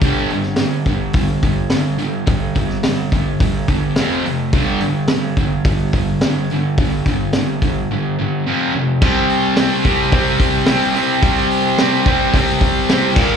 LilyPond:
<<
  \new Staff \with { instrumentName = "Distorted electric guitar" } { \clef bass \time 4/4 \key c \major \tempo 4 = 107 <g, d g>8 <g, d>8 <g, d>8 <g, d>8 <g, d>8 <g, d>8 <g, d>8 <g, d>8 | <g, d>8 <g, d>8 <g, d>8 <g, d>8 <g, d>8 <g, d>8 <f, c f>8 <f, c>8 | <g, d g>8 <g, d>8 <g, d>8 <g, d>8 <g, d>8 <g, d>8 <g, d>8 <g, d>8 | <g, d>8 <g, d>8 <g, d>8 <g, d>8 <g, d>8 <g, d>8 <f, c f>8 <f, c>8 |
<c g c'>4 <c g c'>8 <c g c'>8 <c g c'>4 <c g c'>8 <c g c'>8 | <c g c'>4 <c g c'>8 <c g c'>8 <c g c'>4 <c g c'>8 <bes, f bes>8 | }
  \new DrumStaff \with { instrumentName = "Drums" } \drummode { \time 4/4 <hho bd>8 hho16 sn16 <hho sn>8 <hho bd>8 <hho bd>8 <hho bd>8 <hho sn>8 hho8 | <hho bd>8 <hho bd>16 sn16 <hho sn>8 <hho bd>8 <hho bd>8 <hho bd>8 <hho sn>8 hho8 | <hho bd>8 hho8 <hho sn>8 <hho bd>8 <hho bd>8 <hho bd>8 <hho sn>8 hho8 | <hho bd>8 <hho bd>8 <hho sn>8 <hho bd>8 r4 r4 |
<cymc bd>8 hho8 <hho sn>8 <hho bd>8 <hho bd>8 <hho bd>8 <hho sn>8 hho8 | <hho bd>8 hho8 <hho sn>8 <hho bd>8 <hho bd>8 <hho bd>8 <hho sn>8 <cymc bd>8 | }
>>